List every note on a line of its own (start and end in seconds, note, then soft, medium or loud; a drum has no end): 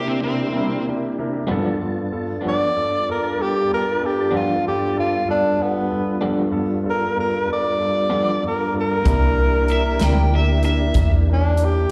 0.00 0.15 C3 medium
0.00 1.44 C3 medium
0.00 1.44 A#3 medium
0.00 0.16 D4 medium
0.00 1.44 D4 medium
0.00 0.16 E4 medium
0.00 1.44 E4 medium
0.00 1.44 G4 medium
0.00 0.16 A#4 medium
0.07 0.22 C4 medium
0.23 0.47 C3 medium
0.23 0.84 C4 medium
0.23 0.47 D4 medium
0.23 0.47 E4 medium
0.23 0.47 A#4 medium
0.53 0.74 C3 medium
0.53 0.79 C3 medium
0.53 0.74 G3 medium
0.53 0.73 A#3 medium
0.53 0.79 D4 medium
0.53 0.73 E4 medium
0.53 0.79 E4 medium
0.53 0.79 A#4 medium
0.87 1.10 C3 medium
0.87 1.10 D4 medium
0.87 1.11 E4 medium
0.87 1.11 A#4 medium
1.18 1.42 C3 medium
1.18 1.42 D4 medium
1.18 1.42 E4 medium
1.18 1.42 A#4 medium
1.47 1.67 G2 medium
1.47 1.73 G2 medium
1.47 5.24 G2 medium
1.47 1.67 F3 medium
1.47 1.68 B3 medium
1.47 1.73 B3 medium
1.47 5.24 B3 medium
1.47 1.68 D4 medium
1.47 5.24 D4 medium
1.47 5.24 F4 medium
1.47 5.24 A5 medium
1.51 1.74 F4 medium
1.51 1.74 A4 medium
1.81 2.05 G2 medium
1.81 2.05 B3 medium
1.81 2.05 F4 medium
1.81 2.05 A4 medium
2.12 2.36 G2 medium
2.12 2.36 B3 medium
2.12 2.36 F4 medium
2.12 2.36 A4 medium
2.41 2.62 G2 medium
2.41 2.68 G2 medium
2.41 2.62 F3 medium
2.41 2.62 B3 medium
2.41 2.61 D4 medium
2.45 2.68 B3 soft
2.45 2.68 F4 soft
2.45 2.68 A4 medium
2.45 3.07 D5 medium
2.75 2.99 G2 medium
2.75 2.99 B3 soft
2.75 3.00 F4 soft
2.75 2.99 A4 medium
3.08 3.31 G2 medium
3.08 3.31 B3 soft
3.08 3.32 F4 medium
3.08 3.32 A4 medium
3.08 3.43 A#4 medium
3.38 3.62 G2 soft
3.38 3.63 B3 soft
3.38 3.62 F4 soft
3.38 3.71 G4 medium
3.38 3.62 A4 medium
3.71 3.94 G2 medium
3.71 3.94 B3 soft
3.71 3.94 F4 soft
3.71 3.95 A4 medium
3.71 4.08 A#4 medium
4.01 4.25 G2 soft
4.01 4.25 B3 soft
4.01 4.25 F4 soft
4.01 4.25 A4 medium
4.06 4.34 G4 medium
4.31 4.56 G2 medium
4.31 4.52 G2 soft
4.31 4.51 F3 medium
4.31 4.51 B3 medium
4.31 4.57 B3 soft
4.31 4.51 D4 medium
4.31 4.57 F4 soft
4.31 4.57 A4 medium
4.36 4.65 F4 medium
4.65 4.89 G2 medium
4.65 4.89 B3 soft
4.65 4.88 F4 soft
4.65 4.97 G4 medium
4.65 4.89 A4 medium
4.96 5.20 G2 medium
4.96 5.20 B3 soft
4.96 5.20 F4 soft
4.96 5.28 F4 medium
4.96 5.20 A4 medium
5.27 5.51 G2 medium
5.27 9.03 G2 medium
5.27 9.03 G3 medium
5.27 5.52 B3 medium
5.27 9.03 B3 medium
5.27 9.03 D4 medium
5.27 5.64 D4 medium
5.27 5.51 F4 soft
5.27 9.03 F4 medium
5.27 5.52 A4 medium
5.58 5.82 G2 soft
5.58 5.82 B3 soft
5.58 5.83 F4 soft
5.58 5.83 A4 medium
5.62 6.22 B3 medium
5.90 6.14 G2 soft
5.90 6.14 B3 soft
5.90 6.14 F4 soft
5.90 6.14 A4 medium
6.21 6.45 G2 soft
6.21 6.41 G2 medium
6.21 6.41 F3 medium
6.21 6.45 B3 soft
6.21 6.41 B3 medium
6.21 6.40 D4 medium
6.21 6.45 F4 soft
6.21 6.45 A4 medium
6.51 6.76 G2 medium
6.51 6.76 B3 medium
6.51 6.76 F4 soft
6.51 6.77 A4 medium
6.84 7.08 G2 medium
6.84 7.08 B3 soft
6.84 7.08 F4 soft
6.84 7.09 A4 medium
6.90 7.18 A#4 medium
7.15 7.40 G2 medium
7.15 7.40 B3 soft
7.15 7.40 F4 soft
7.15 7.41 A4 soft
7.20 7.49 A#4 medium
7.47 7.71 G2 soft
7.47 7.71 B3 soft
7.47 7.72 F4 soft
7.47 7.72 A4 medium
7.53 8.42 D5 medium
7.78 8.03 G2 medium
7.78 8.03 B3 soft
7.78 8.03 F4 soft
7.78 8.03 A4 medium
8.10 8.35 G2 medium
8.10 8.30 G2 medium
8.10 8.30 F3 medium
8.10 8.30 B3 medium
8.10 8.35 B3 soft
8.10 8.30 D4 medium
8.10 8.35 F4 soft
8.10 8.35 A4 medium
8.42 8.67 G2 soft
8.42 8.66 B3 soft
8.42 8.67 F4 soft
8.42 8.67 A4 medium
8.47 8.76 A#4 medium
8.74 8.98 G2 medium
8.74 8.98 B3 soft
8.74 8.98 F4 medium
8.74 8.99 A4 medium
8.81 10.63 A#4 loud
9.04 9.98 C2 medium
9.04 9.24 C3 medium
9.04 9.25 G3 medium
9.04 11.91 A#3 medium
9.04 9.25 A#3 medium
9.04 11.91 D4 medium
9.04 9.30 D4 medium
9.04 9.25 E4 medium
9.04 11.91 E4 medium
9.04 9.31 E4 medium
9.04 11.91 G4 medium
9.04 9.30 A#4 medium
9.04 kick loud
9.04 closed hi-hat medium
9.39 9.62 D4 medium
9.39 9.62 E4 soft
9.39 9.62 A#4 medium
9.68 9.94 D4 medium
9.68 9.94 E4 medium
9.68 9.94 A#4 medium
9.68 10.01 E5 medium
9.68 closed hi-hat medium
9.99 10.93 D2 medium
9.99 10.20 C3 medium
9.99 10.20 G3 medium
9.99 10.19 A#3 medium
9.99 10.24 D4 medium
9.99 10.19 E4 medium
9.99 10.25 E4 medium
9.99 10.25 A#4 medium
9.99 snare loud
9.99 closed hi-hat medium
10.04 10.33 G5 medium
10.32 10.56 D4 medium
10.32 10.56 E4 soft
10.32 10.56 A#4 medium
10.32 10.64 E5 medium
10.63 10.87 D4 medium
10.63 10.87 E4 medium
10.63 10.88 A#4 medium
10.63 11.11 E5 medium
10.63 closed hi-hat soft
10.94 11.87 E2 medium
10.94 11.19 D4 medium
10.94 11.19 E4 medium
10.94 11.20 A#4 medium
10.94 kick loud
10.94 closed hi-hat medium
11.28 11.51 D4 soft
11.28 11.52 E4 soft
11.28 11.52 A#4 medium
11.33 11.66 D4 medium
11.57 11.83 D4 soft
11.57 11.83 E4 soft
11.57 11.83 A#4 medium
11.57 closed hi-hat medium
11.65 11.91 G4 medium